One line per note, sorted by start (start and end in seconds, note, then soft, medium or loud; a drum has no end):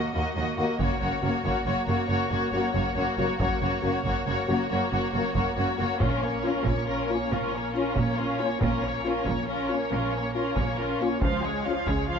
0.00 0.13 A#3 soft
0.00 0.13 F#4 soft
0.00 0.13 D#5 soft
0.14 0.22 D#2 soft
0.14 0.24 D#2 medium
0.14 0.35 A#3 soft
0.14 0.36 F#4 soft
0.14 0.34 D#5 soft
0.35 0.44 D#2 soft
0.35 0.46 D#2 medium
0.35 0.57 A#3 soft
0.35 0.56 F#4 soft
0.35 0.55 D#5 soft
0.57 0.66 D#2 soft
0.57 0.67 D#2 soft
0.57 0.79 A#3 soft
0.57 0.66 A#3 medium
0.57 0.78 F#4 soft
0.57 0.66 F#4 medium
0.57 0.79 D#5 soft
0.79 0.88 F#1 medium
0.79 0.88 F#2 medium
0.79 1.00 A#3 soft
0.79 1.01 F#4 soft
0.79 1.00 C#5 medium
0.79 taiko medium
1.01 1.11 F#1 medium
1.01 1.10 F#2 soft
1.01 1.21 A#3 soft
1.01 1.22 F#4 soft
1.01 1.22 C#5 soft
1.22 1.32 F#1 medium
1.22 1.31 F#2 medium
1.22 1.43 A#3 soft
1.22 1.30 A#3 soft
1.22 1.30 F#4 soft
1.22 1.45 F#4 soft
1.22 1.43 C#5 soft
1.44 1.53 F#1 soft
1.44 1.52 F#2 medium
1.44 1.65 A#3 soft
1.44 1.65 F#4 medium
1.44 1.65 C#5 soft
1.44 taiko medium
1.66 1.74 F#1 medium
1.66 1.74 F#2 medium
1.66 1.88 A#3 soft
1.66 1.87 F#4 soft
1.66 1.85 C#5 medium
1.87 1.96 F#1 medium
1.87 1.95 F#2 medium
1.87 1.96 A#3 medium
1.87 2.10 A#3 soft
1.87 2.09 F#4 soft
1.87 1.96 F#4 medium
1.87 2.08 C#5 medium
2.09 2.17 F#1 medium
2.09 2.17 F#2 medium
2.09 2.31 A#3 medium
2.09 2.29 F#4 medium
2.09 2.29 C#5 medium
2.30 2.39 F#1 medium
2.30 2.40 F#2 medium
2.30 2.52 A#3 soft
2.30 2.52 F#4 medium
2.30 2.50 C#5 medium
2.52 2.61 F#1 soft
2.52 2.61 F#2 soft
2.52 2.74 A#3 soft
2.52 2.61 A#3 medium
2.52 2.61 F#4 medium
2.52 2.75 F#4 soft
2.52 2.73 C#5 soft
2.74 2.83 F#1 medium
2.74 2.83 F#2 soft
2.74 2.95 A#3 soft
2.74 2.96 F#4 soft
2.74 2.95 C#5 medium
2.74 taiko medium
2.96 3.04 F#1 medium
2.96 3.05 F#2 medium
2.96 3.16 A#3 soft
2.96 3.18 F#4 medium
2.96 3.16 C#5 soft
3.17 3.27 F#1 medium
3.17 3.26 F#2 medium
3.17 3.37 A#3 soft
3.17 3.26 A#3 medium
3.17 3.26 F#4 medium
3.17 3.40 F#4 medium
3.17 3.38 C#5 medium
3.38 3.49 F#1 medium
3.38 3.48 F#2 medium
3.38 3.61 A#3 medium
3.38 3.61 F#4 medium
3.38 3.60 C#5 medium
3.38 taiko medium
3.62 3.70 F#1 medium
3.62 3.70 F#2 medium
3.62 3.82 A#3 soft
3.62 3.84 F#4 soft
3.62 3.82 C#5 soft
3.83 3.92 F#1 medium
3.83 3.91 F#2 medium
3.83 4.04 A#3 soft
3.83 3.91 A#3 medium
3.83 3.91 F#4 medium
3.83 4.04 F#4 soft
3.83 4.04 C#5 medium
4.05 4.13 F#1 medium
4.05 4.13 F#2 medium
4.05 4.25 A#3 medium
4.05 4.26 F#4 medium
4.05 4.26 C#5 medium
4.05 taiko medium
4.26 4.35 F#1 medium
4.26 4.35 F#2 medium
4.26 4.47 A#3 soft
4.26 4.48 F#4 soft
4.26 4.47 C#5 medium
4.48 4.57 F#1 medium
4.48 4.57 F#2 medium
4.48 4.69 A#3 soft
4.48 4.56 A#3 medium
4.48 4.56 F#4 medium
4.48 4.70 F#4 soft
4.48 4.69 C#5 medium
4.70 4.78 F#1 medium
4.70 4.79 F#2 medium
4.70 4.91 A#3 medium
4.70 4.91 F#4 medium
4.70 4.92 C#5 medium
4.92 5.01 F#1 medium
4.92 5.00 F#2 medium
4.92 5.12 A#3 medium
4.92 5.12 F#4 medium
4.92 5.13 C#5 soft
5.13 5.22 F#1 medium
5.13 5.22 F#2 soft
5.13 5.34 A#3 medium
5.13 5.22 A#3 medium
5.13 5.34 F#4 soft
5.13 5.21 F#4 medium
5.13 5.35 C#5 soft
5.35 5.43 F#1 medium
5.35 5.43 F#2 medium
5.35 5.56 A#3 medium
5.35 5.56 F#4 medium
5.35 5.56 C#5 medium
5.35 taiko medium
5.57 5.65 F#1 medium
5.57 5.65 F#2 medium
5.57 5.78 A#3 soft
5.57 5.78 F#4 medium
5.57 5.78 C#5 soft
5.78 5.87 F#1 medium
5.78 5.87 F#2 medium
5.78 6.00 A#3 medium
5.78 5.87 A#3 medium
5.78 5.86 F#4 medium
5.78 6.00 F#4 medium
5.78 6.01 C#5 soft
6.00 6.55 A#1 medium
6.00 6.55 A#2 medium
6.00 6.21 C#4 medium
6.00 6.21 F4 medium
6.00 6.21 A#4 medium
6.00 taiko medium
6.22 6.44 A#3 medium
6.22 6.44 C#4 soft
6.22 6.44 C#5 soft
6.43 6.52 C#4 medium
6.43 6.66 C#4 soft
6.43 6.66 F4 soft
6.43 6.51 F4 medium
6.43 6.66 A#4 medium
6.65 7.21 A#1 medium
6.65 7.20 A#2 medium
6.65 6.88 A#3 soft
6.65 6.87 C#4 medium
6.65 6.88 C#5 medium
6.65 taiko medium
6.88 7.08 C#4 soft
6.88 7.08 F4 medium
6.88 7.08 A#4 medium
7.07 7.31 A#3 soft
7.07 7.30 C#4 medium
7.07 7.18 C#4 medium
7.07 7.18 F4 medium
7.07 7.31 C#5 medium
7.31 7.86 A#1 medium
7.31 7.86 A#2 medium
7.31 7.53 C#4 soft
7.31 7.53 F4 medium
7.31 7.53 A#4 soft
7.52 7.75 A#3 soft
7.52 7.74 C#4 soft
7.52 7.75 C#5 soft
7.74 7.95 C#4 soft
7.74 7.83 C#4 medium
7.74 7.94 F4 soft
7.74 7.83 F4 medium
7.74 7.95 A#4 soft
7.95 8.51 A#1 medium
7.95 8.51 A#2 medium
7.95 8.18 A#3 soft
7.95 8.17 C#4 medium
7.95 8.18 C#5 soft
7.95 taiko medium
8.17 8.41 C#4 soft
8.17 8.39 F4 medium
8.17 8.40 A#4 soft
8.39 8.62 A#3 medium
8.39 8.47 C#4 medium
8.39 8.61 C#4 soft
8.39 8.47 F4 medium
8.39 8.61 C#5 soft
8.61 9.16 A#1 medium
8.61 9.16 A#2 medium
8.61 8.82 C#4 medium
8.61 8.81 F4 soft
8.61 8.82 A#4 medium
8.61 taiko medium
8.84 9.05 A#3 soft
8.84 9.05 C#4 soft
8.84 9.05 C#5 soft
9.05 9.12 C#4 medium
9.05 9.27 C#4 soft
9.05 9.27 F4 soft
9.05 9.13 F4 medium
9.05 9.27 A#4 soft
9.26 9.81 A#1 medium
9.26 9.81 A#2 medium
9.26 9.49 A#3 soft
9.26 9.48 C#4 soft
9.26 9.48 C#5 medium
9.26 taiko medium
9.48 9.69 C#4 soft
9.48 9.69 F4 soft
9.48 9.68 A#4 soft
9.69 9.92 A#3 soft
9.69 9.77 C#4 medium
9.69 9.92 C#4 soft
9.69 9.77 F4 medium
9.69 9.92 C#5 soft
9.91 10.46 A#1 medium
9.91 10.46 A#2 medium
9.91 10.14 C#4 soft
9.91 10.13 F4 medium
9.91 10.13 A#4 soft
10.12 10.36 A#3 soft
10.12 10.34 C#4 medium
10.12 10.35 C#5 soft
10.34 10.43 C#4 soft
10.34 10.56 C#4 soft
10.34 10.56 F4 soft
10.34 10.43 F4 medium
10.34 10.55 A#4 soft
10.56 11.12 A#1 medium
10.56 11.11 A#2 medium
10.56 10.79 A#3 soft
10.56 10.78 C#4 soft
10.56 10.78 C#5 soft
10.56 taiko medium
10.77 11.01 C#4 soft
10.77 11.00 F4 medium
10.77 11.00 A#4 soft
11.00 11.22 A#3 soft
11.00 11.22 C#4 soft
11.00 11.09 C#4 medium
11.00 11.09 F4 medium
11.00 11.22 C#5 soft
11.21 11.77 C#2 medium
11.21 11.76 C#3 medium
11.21 11.43 F3 soft
11.21 11.42 F4 soft
11.21 11.42 F5 soft
11.21 taiko medium
11.42 11.66 G#3 soft
11.42 11.65 G#4 soft
11.42 11.65 C#5 soft
11.65 11.88 F3 soft
11.65 11.73 C#4 soft
11.65 11.87 F4 soft
11.65 11.73 F4 medium
11.65 11.87 F5 soft
11.87 12.19 C#2 medium
11.87 12.19 C#3 medium
11.87 12.09 G#3 soft
11.87 12.09 G#4 soft
11.87 12.09 C#5 soft
11.87 taiko medium
12.09 12.19 F3 soft
12.09 12.19 F4 soft
12.09 12.19 F5 soft